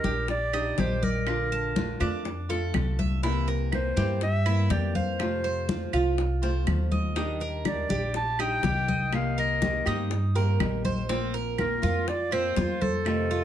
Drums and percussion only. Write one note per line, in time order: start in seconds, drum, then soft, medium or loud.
0.04 high bongo soft
0.04 high conga medium
0.28 high bongo medium
0.28 high conga soft
0.53 high conga soft
0.53 claves medium
0.78 high bongo medium
0.78 low bongo medium
0.78 high conga medium
1.02 high bongo soft
1.02 high conga medium
1.27 high bongo medium
1.27 high conga soft
1.27 claves medium
1.52 high conga soft
1.76 high bongo medium
1.76 high conga loud
2.01 high bongo soft
2.01 claves medium
2.25 high bongo medium
2.25 high conga soft
2.50 high bongo soft
2.50 high conga soft
2.74 high bongo medium
2.74 low bongo medium
2.74 high conga medium
2.74 claves medium
2.99 high bongo soft
2.99 high conga medium
3.24 high bongo medium
3.24 high conga soft
3.48 high bongo soft
3.48 high conga soft
3.72 high bongo medium
3.72 high conga medium
3.72 claves medium
3.97 high bongo soft
3.97 high conga medium
4.21 high bongo medium
4.21 high conga soft
4.46 high conga soft
4.46 claves medium
4.70 high bongo medium
4.70 low bongo medium
4.70 high conga medium
4.95 high bongo soft
4.95 high conga medium
5.20 high bongo medium
5.20 high conga soft
5.20 claves medium
5.44 high conga soft
5.69 high bongo medium
5.69 high conga loud
5.93 high bongo soft
5.93 claves medium
6.18 high bongo medium
6.18 high conga soft
6.43 high bongo soft
6.43 high conga soft
6.67 high bongo medium
6.67 low bongo medium
6.67 high conga medium
6.67 claves medium
6.92 high bongo soft
6.92 high conga medium
7.16 high bongo medium
7.16 high conga soft
7.40 high bongo soft
7.40 high conga soft
7.65 high bongo medium
7.65 high conga medium
7.65 claves medium
7.90 high bongo soft
7.90 high conga medium
8.14 high bongo medium
8.14 high conga soft
8.39 high conga soft
8.39 claves medium
8.63 high bongo medium
8.63 low bongo medium
8.63 high conga medium
8.88 high bongo soft
8.88 high conga medium
9.13 high bongo medium
9.13 high conga soft
9.13 claves medium
9.38 high conga soft
9.62 high bongo medium
9.62 high conga loud
9.86 high bongo soft
9.86 claves medium
10.11 high bongo medium
10.11 high conga soft
10.36 high bongo soft
10.36 high conga soft
10.60 high bongo medium
10.60 low bongo medium
10.60 high conga medium
10.60 claves medium
10.85 high bongo soft
10.85 high conga medium
11.09 high bongo medium
11.09 high conga soft
11.34 high bongo soft
11.34 high conga soft
11.58 high bongo medium
11.58 high conga medium
11.58 claves medium
11.83 high bongo soft
11.83 high conga medium
12.08 high bongo medium
12.08 high conga soft
12.32 high conga soft
12.32 claves medium
12.56 high bongo medium
12.56 low bongo medium
12.56 high conga medium
12.81 high bongo soft
12.81 high conga medium
13.06 high bongo medium
13.06 high conga soft
13.06 claves medium
13.31 high conga soft